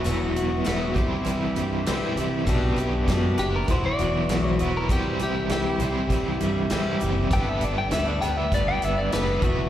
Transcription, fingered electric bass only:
\new Staff \with { instrumentName = "Fingered electric bass" } { \clef bass \time 4/4 \key g \major \tempo 4 = 99 e,,4 e,,8 c,8 c,8 g,8 c,8 c,8 | b,,8 b,,8 fis,8 fis,,8 e,,8 e,,8 b,,8 e,,8 | c,4 c,8 c,8 c,8 g,8 c,8 fis,,8 | g,,8 g,,8 d,8 d,8 g,,8 g,,8 fis,,8 e,,8 | }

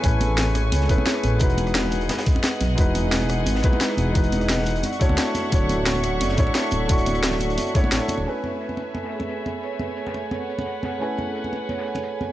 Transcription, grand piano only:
\new Staff \with { instrumentName = "Grand piano" } { \time 4/4 \key a \major \tempo 4 = 175 <a cis' e' b' gis''>2~ <a cis' e' b' gis''>8 <a cis' e' gis' b'>16 r4 r16 | <gis dis' e' fis' b'>2~ <gis dis' e' fis' b'>8 r4. | <gis dis' e' fis' b'>2~ <gis dis' e' fis' b'>8 <gis dis' e' fis' b'>16 r4 r16 | <gis dis' e' fis' b'>2 r8 <a d' e' fis' cis''>16 r4 r16 |
<a d' e' fis' cis''>2~ <a d' e' fis' cis''>8 <a d' e' fis' cis''>16 r4 r16 | <a d' e' fis' cis'''>2~ <a d' e' fis' cis'''>8 <a d' e' fis' cis''>16 r4 r16 | <a cis' e' b' gis''>1~ | <a cis' e' b' gis''>1 |
<a cis' e' b' gis''>1 | }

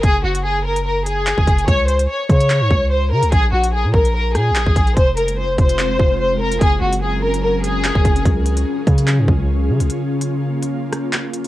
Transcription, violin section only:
\new Staff \with { instrumentName = "Violin section" } { \time 4/4 \key ges \lydian \tempo 4 = 146 aes'8 ges'8 aes'8 bes'8 bes'8 aes'4. | des''8 c''8 des''8 des''4. c''8 bes'8 | aes'8 ges'8 aes'8 bes'8 bes'8 aes'4. | c''8 bes'8 c''8 c''4. c''8 bes'8 |
aes'8 ges'8 aes'8 bes'8 bes'8 aes'4. | r1 | r1 | }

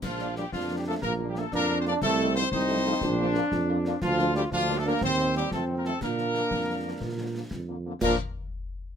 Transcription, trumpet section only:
\new Staff \with { instrumentName = "Trumpet section" } { \time 6/8 \key bes \major \tempo 4. = 120 f'4 g'8 f'8. g'16 a'8 | bes'8. g'16 a'8 bes'8. c''16 d''8 | a'4 c''8 c''4.~ | c''2~ c''8 r8 |
f'4 g'8 f'8. a'16 bes'8 | c''4 g'8 a'8. bes'16 a'8 | bes'2.~ | bes'4. r4. |
bes'8 r2 r8 | }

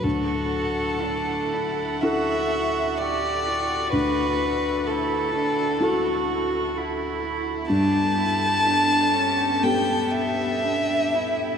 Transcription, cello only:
\new Staff \with { instrumentName = "Cello" } { \time 4/4 \key d \major \tempo 4 = 63 fis'4 d'8 e'8 fis'4 g'8 fis'8~ | fis'4 e'8 d'8 fis'4 e'4 | d'8 e'8 d'8 cis'8 b4 d'8 e'8 | }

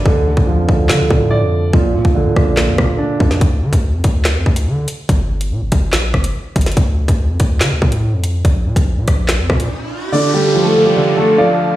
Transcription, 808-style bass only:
\new Staff \with { instrumentName = "808-style bass" } { \clef bass \time 4/4 \key d \minor \tempo 4 = 143 d,8. d,8 f,16 d,8 d16 d,16 a,8. f,8. | bes,,8 bes,16 bes,,8 bes,16 bes,,8. f,16 bes,8 r8 f,8 | d,8 d16 d,8 f,16 d,8. f,16 d,8 d8 r8 | g,,4 bes,16 g,,16 g,,8 bes,,8 g,,8 r8 g,,8 |
d,8. d,8 f,16 d,8 d16 d,16 a,8. f,8. | bes,,8 bes,16 bes,,8 bes,16 bes,,8. f,16 bes,8 r4 | r1 | }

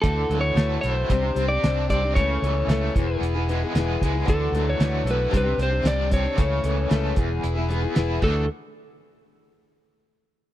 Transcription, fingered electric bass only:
\new Staff \with { instrumentName = "Fingered electric bass" } { \clef bass \time 4/4 \key e \mixolydian \tempo 4 = 114 d,8 d,8 d,8 b,,8 c,8 c,8 c,4 | cis,8 cis,8 cis,8 e,,8 e,,4 e,,8 cis,8 | d,8 d,8 d,8 b,,8 c,8 c,8 c,4 | cis,8 cis,8 cis,8 e,,8 e,,4 e,,8 d,8 |
r1 | }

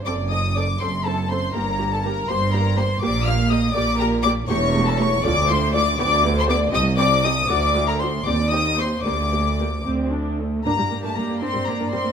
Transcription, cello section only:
\new Staff \with { instrumentName = "Cello section" } { \clef bass \time 6/8 \key g \minor \tempo 4. = 80 fis,4. fis,4. | g,4. g,4. | bes,4. bes,4. | e,4. d,4. |
d,4. c,4. | d,4. ees,4. | d,4. d,4. | bes8. a16 bes8 c'8 bes8 c'8 | }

